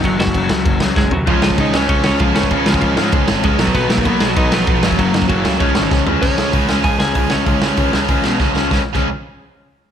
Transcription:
<<
  \new Staff \with { instrumentName = "Lead electric guitar" } { \time 4/4 \key des \mixolydian \tempo 4 = 194 <ges ges'>8 <ges ges'>2~ <ges ges'>8 <aes aes'>8 <ges ges'>8 | <f f'>8 <f f'>8 <ees' ees''>8 <des' des''>8 <des' des''>8 <des' des''>8 <f f'>8 <des' des''>8~ | <des' des''>8 <f f'>8 <f f'>4 r4 <aes aes'>8 <ges ges'>8 | <ces' ces''>8 <bes bes'>4 <aes aes'>16 <ges ges'>16 <ees' ees''>8 <f f'>4. |
<ges ges'>4 <ges ges'>4 <des' des''>4. r8 | <des' des''>2 <aes' aes''>8 <aes' aes''>4 <des' des''>8~ | <des' des''>2. r4 | r1 | }
  \new Staff \with { instrumentName = "Overdriven electric guitar" } { \clef bass \time 4/4 \key des \mixolydian <ges, des ges>4 <ges, des ges>4. <ges, des ges>4 r8 | <des aes des'>4. <des aes des'>4. <des aes des'>4 | <des aes des'>4. <des aes des'>4. <des aes des'>8 <ces ges ces'>8~ | <ces ges ces'>4 <ces ges ces'>4. <ces ges ces'>4 <ges, des ges>8~ |
<ges, des ges>4 <ges, des ges>4 <des aes des'>4. <des aes des'>8 | <des aes des'>8 <des aes des'>8 <des aes des'>8 <des aes des'>8 <des aes des'>8 <des aes des'>8 <des aes des'>8 <des aes des'>8 | <des aes des'>8 <des aes des'>8 <des aes des'>8 <des aes des'>8 <des aes des'>8 <des aes des'>8 <des aes des'>8 <des aes des'>8 | <des aes des'>16 r8 <des aes des'>8 r2 r8. | }
  \new Staff \with { instrumentName = "Distorted electric guitar" } { \clef bass \time 4/4 \key des \mixolydian r1 | <des f aes des'>2~ <des f aes des'>8 <des f aes des'>8 <des f aes des'>4 | <des f aes des'>2~ <des f aes des'>8 <des f aes des'>8 <des f aes des'>8 <ces ges ces' ees'>8~ | <ces ges ces' ees'>2 <ces ges ces' ees'>8 <ces ges ces' ees'>4 <ges, des ges bes des'>8~ |
<ges, des ges bes des'>2 <des f aes des'>2 | <des f aes des'>8 <des f aes des'>8 <des f aes des'>8 <des f aes des'>8 <des f aes des'>8 <des f aes des'>8 <des f aes des'>8 <des f aes des'>8 | <des f aes des'>8 <des f aes des'>8 <des f aes des'>8 <des f aes des'>8 <des f aes des'>8 <des f aes des'>8 <des f aes des'>8 <des f aes des'>8 | <des f aes des'>16 r8 <des f aes des'>8 r2 r8. | }
  \new Staff \with { instrumentName = "Picked electric bass" } { \clef bass \time 4/4 \key des \mixolydian ges,,8 ges,,8 ges,,8 des,8 ges,,8 des,8 ges,,8 c,8 | des,8 des,8 des,8 des,8 des,8 des,8 des,8 des,8 | des,8 des,8 des,8 aes,8 des,8 aes,,8 des,8 ces,8 | ces,8 ces,8 ces,8 ces,8 ces,8 ces,8 ces,8 ges,,8 |
ges,,8 ges,,8 ges,,8 des,8 des,8 aes,,8 des,8 des,8 | des,4 des,8 des,8 des,8 des,8 des,8 des,8 | des,8 des,8 des,8 des,8 des,8 ces8 des,8 des,8 | des,16 r8 des,8 r2 r8. | }
  \new DrumStaff \with { instrumentName = "Drums" } \drummode { \time 4/4 <cymc bd>8 sn16 bd16 <cymc bd>8 sn8 <cymc bd>8 sn8 <bd sn>8 tomfh8 | <cymc bd>8 sn16 bd16 <cymc bd>8 sn8 <cymc bd>8 sn8 <cymc bd>8 sn16 bd16 | <cymc bd>8 sn16 bd16 <cymc bd>8 sn8 <cymc bd>8 sn8 <cymc bd>8 sn16 bd16 | <cymc bd>8 sn16 bd16 <cymc bd>8 sn8 <cymc bd>8 sn8 <cymc bd>8 sn16 bd16 |
<cymc bd>8 sn16 bd16 <cymc bd>8 sn8 <cymc bd>8 sn8 <bd sn>8 tomfh8 | <cymc bd>8 sn8 <hho bd>8 sn8 <hho bd>8 sn8 <hho bd>8 sn8 | <hho bd>8 sn8 <hho bd>8 sn8 <hho bd>8 sn8 <bd sn>8 sn8 | <bd sn>8. <cymc bd>16 r4 r4 r4 | }
>>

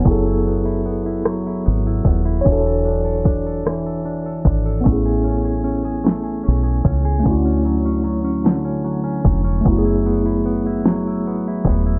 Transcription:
<<
  \new Staff \with { instrumentName = "Tine electric piano" } { \time 6/8 \key fis \minor \tempo 4. = 50 <b e' gis' a'>2. | <d' fis' a' cis''>2. | <b cis' e' gis'>2. | <a cis' e' fis'>2. |
<a b e' fis' gis'>2. | }
  \new Staff \with { instrumentName = "Clean electric guitar" } { \time 6/8 \key fis \minor fis16 e'16 b16 e'16 b16 e'16 fis16 e'16 b16 e'16 b16 e'16 | e16 a'16 d'16 a'16 d'16 a'16 e16 a'16 d'16 a'16 d'16 a'16 | a16 gis'16 cis'16 gis'16 cis'16 gis'16 a16 gis'16 cis'16 gis'16 cis'16 gis'16 | d16 cis'16 fis16 cis'16 fis16 cis'16 d16 cis'16 fis16 cis'16 fis16 cis'16 |
fis16 e'16 b16 e'16 b16 e'16 fis16 e'16 b16 e'16 b16 e'16 | }
  \new Staff \with { instrumentName = "Fingered electric bass" } { \clef bass \time 6/8 \key fis \minor fis,,2 gis,,8 dis,,8 | e,,2~ e,,8 gis,,8 | a,,2 b,,8 cis,8 | d,2~ d,8 eis,,8 |
fis,,2 gis,,8 dis,,8 | }
  \new DrumStaff \with { instrumentName = "Drums" } \drummode { \time 6/8 <hh bd>8 hh8 hh8 <hh ss>8 hh8 <hh bd>8 | <hh bd>8 hh8 <hh bd>8 <hh ss>8 hh8 <hh bd>8 | <hh bd>8 hh8 hh8 <hh sn>8 hh8 <hh bd>8 | <hh bd>8 hh8 hh8 <hh sn>8 hh8 <hh bd>8 |
<hh bd>8 hh8 hh8 <hh sn>8 hh8 <hh bd>8 | }
>>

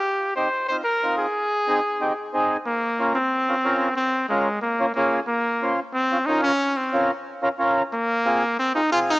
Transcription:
<<
  \new Staff \with { instrumentName = "Accordion" } { \time 4/4 \key bes \dorian \tempo 4 = 183 r4 <c' ees' g'>8 r8 <c' ees' f'>8 r8 <c' ees' f'>8 r8 | r4 <c' ees' aes'>8 r8 <c' ees' g'>8 r8 <c' ees' aes'>8 r8 | r4 <des' f' bes'>8 r4 <des' f' bes'>8 <des' f' bes'>8 r8 | r4 <des' f' bes'>8 r4 <des' f' bes'>8 <des' f' aes'>8 r8 |
r4 <des' f' c''>8 r4 <des' f' des''>8 <des' f' bes'>8 r8 | r4 <des' f' bes'>8 r4 <des' f' bes'>8 <des' f' bes'>8 r8 | r4 <c' f' aes'>8 r4 <c' f' aes'>8 <c' f' aes'>8 r8 | }
  \new Staff \with { instrumentName = "Trumpet" } { \time 4/4 \key bes \dorian g'4 c''4 c''8 bes'4 aes'8~ | aes'2.~ aes'8 r8 | bes4. c'2~ c'8 | c'4 aes4 bes4 bes8. r16 |
bes4. r8 c'4 ees'8 des'8~ | des'8 c'4 r2 r8 | bes2 c'8 ees'8 f'8 ees'8 | }
>>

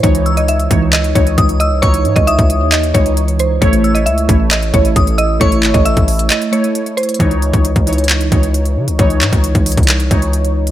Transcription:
<<
  \new Staff \with { instrumentName = "Synth bell" } { \time 4/4 \key cis \minor \tempo 4 = 134 r8 e'''2~ e'''8 dis'''8 e'''8 | cis'''4 dis'''2. | r8 e'''2~ e'''8 dis'''8 e'''8 | cis'''4 e'''4 r2 |
r1 | r1 | }
  \new Staff \with { instrumentName = "Synth pluck" } { \time 4/4 \key cis \minor cis''8. dis''16 e''4 dis''8 cis''4 dis''8 | cis''8. dis''16 e''4 dis''8 cis''4 bis'8 | cis''8. dis''16 e''4 dis''8 cis''4 dis''8 | cis''8. dis''16 e''4 dis''8 cis''4 bis'8 |
r1 | r1 | }
  \new Staff \with { instrumentName = "Synth keys" } { \time 4/4 \key cis \minor <e dis' cis''>8 r16 <e dis' cis''>8 r16 <e dis' cis''>8. r16 <e dis' cis''>4~ <e dis' cis''>16 r16 | <e dis' cis''>4. r4 <e dis' cis''>4~ <e dis' cis''>16 r16 | <a e' cis''>8 r16 <a e' cis''>8 r16 <a e' cis''>8. r16 <a e' cis''>4~ <a e' cis''>16 r16 | <a e' cis''>4. r4 <a e' cis''>4~ <a e' cis''>16 r16 |
<e dis' cis''>8 r16 <e dis' cis''>8 r16 <e dis' cis''>8. r16 <e dis' cis''>4~ <e dis' cis''>16 r16 | <e dis' cis''>4. r4 <e dis' cis''>4~ <e dis' cis''>16 r16 | }
  \new Staff \with { instrumentName = "808-style bass" } { \clef bass \time 4/4 \key cis \minor cis,4. cis,4 cis,8 cis,8. bis,,16 | cis,8 gis,16 cis,8 cis,8 dis,8. cis,4. | a,,4 cis,8 a,,4 a,,8 a,,4 | a,,8 gis,,16 a,,8 a,,8. r2 |
cis,8. cis,8 cis,4~ cis,16 cis,4 cis16 cis,16 | cis,8 gis,16 cis,8 cis,8 bis,,8. cis,4. | }
  \new DrumStaff \with { instrumentName = "Drums" } \drummode { \time 4/4 <hh bd>16 hh16 hh16 hh16 hh16 hh16 <hh bd>8 <hc hh>16 hh16 <hh bd>16 hh16 <hh bd>16 hh16 hh8 | <hh bd>16 hh16 hh16 <hh bd>16 hh16 <hh bd>16 hh8 <hc hh>16 hh16 <hh bd>16 hh16 hh16 hh16 hh8 | <hh bd>16 hh16 hh16 hh16 hh16 hh16 <hh bd>8 <hc hh>16 hh16 <hh bd>16 hh16 <hh bd>16 hh16 hh8 | <hh bd>16 hh16 <hc hh>16 <hh bd>16 hh16 <hh bd>16 <hh hho>16 hh16 <hc hh>16 hh16 hh16 hh16 hh16 hh16 hh32 hh32 hh32 hh32 |
<hh bd>16 hh16 hh16 <hh bd>16 hh16 <hh bd>16 hh32 hh32 hh32 hh32 <hc hh>16 hh16 <hh bd>16 hh16 hh16 hh8 hh16 | <hh bd>16 hh16 <hc hh>16 <hh bd>16 hh16 <hh bd>16 <hh hho>32 hh32 <hh bd>32 hh32 <hc hh>16 hh16 <hh bd>16 hh16 hh16 hh8 hh16 | }
>>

